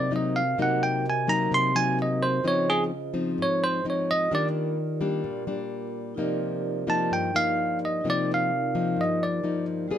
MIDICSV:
0, 0, Header, 1, 4, 480
1, 0, Start_track
1, 0, Tempo, 466200
1, 596, Time_signature, 4, 2, 24, 8
1, 10276, End_track
2, 0, Start_track
2, 0, Title_t, "Tine electric piano"
2, 0, Program_c, 0, 4
2, 0, Note_on_c, 0, 74, 89
2, 123, Note_off_c, 0, 74, 0
2, 163, Note_on_c, 0, 75, 68
2, 371, Note_on_c, 0, 77, 81
2, 373, Note_off_c, 0, 75, 0
2, 596, Note_off_c, 0, 77, 0
2, 641, Note_on_c, 0, 78, 83
2, 852, Note_off_c, 0, 78, 0
2, 855, Note_on_c, 0, 79, 87
2, 1078, Note_off_c, 0, 79, 0
2, 1128, Note_on_c, 0, 80, 82
2, 1333, Note_on_c, 0, 82, 95
2, 1335, Note_off_c, 0, 80, 0
2, 1557, Note_off_c, 0, 82, 0
2, 1589, Note_on_c, 0, 84, 98
2, 1805, Note_off_c, 0, 84, 0
2, 1812, Note_on_c, 0, 80, 100
2, 2036, Note_off_c, 0, 80, 0
2, 2081, Note_on_c, 0, 75, 76
2, 2291, Note_off_c, 0, 75, 0
2, 2291, Note_on_c, 0, 72, 91
2, 2516, Note_off_c, 0, 72, 0
2, 2549, Note_on_c, 0, 73, 90
2, 2765, Note_off_c, 0, 73, 0
2, 2777, Note_on_c, 0, 68, 96
2, 2914, Note_off_c, 0, 68, 0
2, 3526, Note_on_c, 0, 73, 86
2, 3733, Note_off_c, 0, 73, 0
2, 3744, Note_on_c, 0, 72, 93
2, 3961, Note_off_c, 0, 72, 0
2, 4013, Note_on_c, 0, 73, 69
2, 4216, Note_off_c, 0, 73, 0
2, 4229, Note_on_c, 0, 75, 101
2, 4444, Note_off_c, 0, 75, 0
2, 4476, Note_on_c, 0, 74, 89
2, 4607, Note_off_c, 0, 74, 0
2, 7101, Note_on_c, 0, 81, 89
2, 7333, Note_off_c, 0, 81, 0
2, 7341, Note_on_c, 0, 79, 88
2, 7573, Note_off_c, 0, 79, 0
2, 7577, Note_on_c, 0, 77, 98
2, 8013, Note_off_c, 0, 77, 0
2, 8083, Note_on_c, 0, 75, 79
2, 8305, Note_off_c, 0, 75, 0
2, 8338, Note_on_c, 0, 74, 88
2, 8552, Note_off_c, 0, 74, 0
2, 8587, Note_on_c, 0, 77, 91
2, 9276, Note_on_c, 0, 75, 77
2, 9292, Note_off_c, 0, 77, 0
2, 9503, Note_off_c, 0, 75, 0
2, 9504, Note_on_c, 0, 74, 70
2, 9938, Note_off_c, 0, 74, 0
2, 10276, End_track
3, 0, Start_track
3, 0, Title_t, "Vibraphone"
3, 0, Program_c, 1, 11
3, 0, Control_c, 1, 64, 127
3, 0, Note_on_c, 1, 60, 60
3, 0, Note_on_c, 1, 66, 58
3, 0, Note_on_c, 1, 70, 55
3, 0, Note_on_c, 1, 72, 57
3, 0, Note_on_c, 1, 75, 67
3, 538, Note_off_c, 1, 60, 0
3, 544, Note_off_c, 1, 66, 0
3, 555, Note_off_c, 1, 70, 0
3, 562, Note_off_c, 1, 72, 0
3, 568, Note_off_c, 1, 75, 0
3, 568, Note_on_c, 1, 60, 54
3, 587, Note_on_c, 1, 66, 45
3, 600, Note_on_c, 1, 70, 51
3, 616, Note_on_c, 1, 72, 47
3, 628, Note_on_c, 1, 75, 58
3, 2461, Note_off_c, 1, 60, 0
3, 2471, Note_off_c, 1, 66, 0
3, 2478, Note_off_c, 1, 70, 0
3, 2486, Note_off_c, 1, 72, 0
3, 2488, Note_on_c, 1, 65, 52
3, 2492, Note_off_c, 1, 75, 0
3, 2506, Note_on_c, 1, 68, 51
3, 2525, Note_on_c, 1, 72, 47
3, 2528, Control_c, 1, 64, 0
3, 2699, Control_c, 1, 64, 127
3, 4380, Note_off_c, 1, 65, 0
3, 4389, Note_off_c, 1, 68, 0
3, 4399, Note_off_c, 1, 72, 0
3, 4402, Note_on_c, 1, 65, 55
3, 4418, Note_on_c, 1, 67, 49
3, 4441, Note_on_c, 1, 70, 49
3, 4445, Control_c, 1, 64, 0
3, 4457, Note_on_c, 1, 74, 58
3, 4630, Control_c, 1, 64, 127
3, 6298, Note_off_c, 1, 65, 0
3, 6306, Note_off_c, 1, 67, 0
3, 6317, Note_off_c, 1, 70, 0
3, 6326, Note_off_c, 1, 74, 0
3, 6326, Note_on_c, 1, 63, 58
3, 6343, Note_on_c, 1, 65, 54
3, 6357, Note_on_c, 1, 67, 52
3, 6364, Control_c, 1, 64, 0
3, 6370, Note_on_c, 1, 70, 53
3, 6386, Note_on_c, 1, 74, 63
3, 6538, Control_c, 1, 64, 127
3, 8222, Note_off_c, 1, 63, 0
3, 8230, Note_off_c, 1, 65, 0
3, 8237, Note_off_c, 1, 67, 0
3, 8244, Note_off_c, 1, 70, 0
3, 8247, Note_on_c, 1, 63, 53
3, 8253, Note_off_c, 1, 74, 0
3, 8261, Note_on_c, 1, 65, 47
3, 8277, Note_on_c, 1, 67, 43
3, 8296, Note_on_c, 1, 70, 45
3, 8312, Note_on_c, 1, 74, 54
3, 10145, Note_off_c, 1, 63, 0
3, 10152, Note_off_c, 1, 65, 0
3, 10160, Note_off_c, 1, 67, 0
3, 10169, Note_on_c, 1, 55, 62
3, 10170, Note_off_c, 1, 70, 0
3, 10178, Note_off_c, 1, 74, 0
3, 10181, Note_on_c, 1, 65, 58
3, 10201, Note_on_c, 1, 68, 55
3, 10209, Control_c, 1, 64, 0
3, 10215, Note_on_c, 1, 71, 56
3, 10231, Note_on_c, 1, 74, 64
3, 10276, Note_off_c, 1, 55, 0
3, 10276, Note_off_c, 1, 65, 0
3, 10276, Note_off_c, 1, 68, 0
3, 10276, Note_off_c, 1, 71, 0
3, 10276, Note_off_c, 1, 74, 0
3, 10276, End_track
4, 0, Start_track
4, 0, Title_t, "Nylon-string guitar"
4, 0, Program_c, 2, 24
4, 0, Note_on_c, 2, 48, 73
4, 110, Note_on_c, 2, 54, 55
4, 114, Note_on_c, 2, 58, 51
4, 120, Note_on_c, 2, 63, 60
4, 422, Note_off_c, 2, 54, 0
4, 425, Note_off_c, 2, 58, 0
4, 426, Note_off_c, 2, 63, 0
4, 572, Note_off_c, 2, 48, 0
4, 600, Note_on_c, 2, 48, 74
4, 603, Note_on_c, 2, 54, 57
4, 606, Note_on_c, 2, 58, 57
4, 611, Note_on_c, 2, 63, 68
4, 1075, Note_off_c, 2, 54, 0
4, 1077, Note_off_c, 2, 58, 0
4, 1080, Note_off_c, 2, 63, 0
4, 1312, Note_on_c, 2, 54, 61
4, 1319, Note_on_c, 2, 58, 62
4, 1325, Note_on_c, 2, 63, 65
4, 1533, Note_off_c, 2, 48, 0
4, 1559, Note_on_c, 2, 48, 70
4, 1756, Note_off_c, 2, 54, 0
4, 1757, Note_off_c, 2, 58, 0
4, 1758, Note_off_c, 2, 63, 0
4, 1800, Note_on_c, 2, 54, 63
4, 1806, Note_on_c, 2, 58, 64
4, 1812, Note_on_c, 2, 63, 64
4, 2478, Note_off_c, 2, 54, 0
4, 2481, Note_off_c, 2, 58, 0
4, 2484, Note_off_c, 2, 63, 0
4, 2492, Note_off_c, 2, 48, 0
4, 2508, Note_on_c, 2, 49, 76
4, 2513, Note_on_c, 2, 53, 60
4, 2519, Note_on_c, 2, 60, 58
4, 2521, Note_on_c, 2, 63, 66
4, 2991, Note_off_c, 2, 53, 0
4, 2992, Note_off_c, 2, 60, 0
4, 2992, Note_off_c, 2, 63, 0
4, 3229, Note_on_c, 2, 53, 57
4, 3231, Note_on_c, 2, 60, 62
4, 3235, Note_on_c, 2, 63, 72
4, 3446, Note_off_c, 2, 49, 0
4, 3482, Note_on_c, 2, 44, 74
4, 3911, Note_off_c, 2, 60, 0
4, 3912, Note_off_c, 2, 53, 0
4, 3915, Note_off_c, 2, 63, 0
4, 3962, Note_on_c, 2, 53, 56
4, 3969, Note_on_c, 2, 60, 53
4, 3971, Note_on_c, 2, 63, 60
4, 4399, Note_off_c, 2, 53, 0
4, 4401, Note_off_c, 2, 63, 0
4, 4402, Note_off_c, 2, 60, 0
4, 4412, Note_off_c, 2, 44, 0
4, 4439, Note_on_c, 2, 51, 71
4, 4443, Note_on_c, 2, 58, 59
4, 4444, Note_on_c, 2, 55, 62
4, 4451, Note_on_c, 2, 62, 67
4, 4914, Note_off_c, 2, 55, 0
4, 4915, Note_off_c, 2, 58, 0
4, 4917, Note_off_c, 2, 62, 0
4, 5155, Note_on_c, 2, 55, 67
4, 5159, Note_on_c, 2, 58, 63
4, 5162, Note_on_c, 2, 62, 70
4, 5371, Note_off_c, 2, 51, 0
4, 5395, Note_on_c, 2, 46, 74
4, 5594, Note_off_c, 2, 55, 0
4, 5597, Note_off_c, 2, 58, 0
4, 5597, Note_off_c, 2, 62, 0
4, 5634, Note_on_c, 2, 55, 64
4, 5634, Note_on_c, 2, 58, 66
4, 5641, Note_on_c, 2, 62, 73
4, 6314, Note_off_c, 2, 55, 0
4, 6314, Note_off_c, 2, 58, 0
4, 6318, Note_off_c, 2, 62, 0
4, 6329, Note_off_c, 2, 46, 0
4, 6355, Note_on_c, 2, 48, 68
4, 6361, Note_on_c, 2, 53, 57
4, 6362, Note_on_c, 2, 58, 57
4, 6371, Note_on_c, 2, 63, 59
4, 7038, Note_off_c, 2, 53, 0
4, 7038, Note_off_c, 2, 58, 0
4, 7043, Note_off_c, 2, 63, 0
4, 7073, Note_on_c, 2, 53, 61
4, 7078, Note_on_c, 2, 58, 61
4, 7085, Note_on_c, 2, 63, 69
4, 7291, Note_off_c, 2, 48, 0
4, 7321, Note_on_c, 2, 43, 66
4, 7515, Note_off_c, 2, 53, 0
4, 7516, Note_off_c, 2, 58, 0
4, 7520, Note_off_c, 2, 63, 0
4, 7563, Note_on_c, 2, 53, 57
4, 7570, Note_on_c, 2, 58, 63
4, 7573, Note_on_c, 2, 63, 66
4, 8240, Note_off_c, 2, 53, 0
4, 8244, Note_off_c, 2, 58, 0
4, 8244, Note_off_c, 2, 63, 0
4, 8254, Note_off_c, 2, 43, 0
4, 8281, Note_on_c, 2, 48, 69
4, 8288, Note_on_c, 2, 53, 58
4, 8291, Note_on_c, 2, 58, 54
4, 8294, Note_on_c, 2, 63, 58
4, 8757, Note_off_c, 2, 53, 0
4, 8757, Note_off_c, 2, 58, 0
4, 8762, Note_off_c, 2, 63, 0
4, 9007, Note_on_c, 2, 53, 66
4, 9009, Note_on_c, 2, 58, 55
4, 9013, Note_on_c, 2, 63, 62
4, 9216, Note_off_c, 2, 48, 0
4, 9230, Note_on_c, 2, 43, 68
4, 9684, Note_off_c, 2, 53, 0
4, 9684, Note_off_c, 2, 58, 0
4, 9687, Note_off_c, 2, 63, 0
4, 9715, Note_on_c, 2, 53, 49
4, 9719, Note_on_c, 2, 58, 49
4, 9723, Note_on_c, 2, 63, 54
4, 10158, Note_off_c, 2, 53, 0
4, 10160, Note_off_c, 2, 58, 0
4, 10161, Note_off_c, 2, 63, 0
4, 10170, Note_off_c, 2, 43, 0
4, 10197, Note_on_c, 2, 59, 59
4, 10200, Note_on_c, 2, 55, 67
4, 10202, Note_on_c, 2, 65, 53
4, 10207, Note_on_c, 2, 68, 61
4, 10276, Note_off_c, 2, 55, 0
4, 10276, Note_off_c, 2, 59, 0
4, 10276, Note_off_c, 2, 65, 0
4, 10276, Note_off_c, 2, 68, 0
4, 10276, End_track
0, 0, End_of_file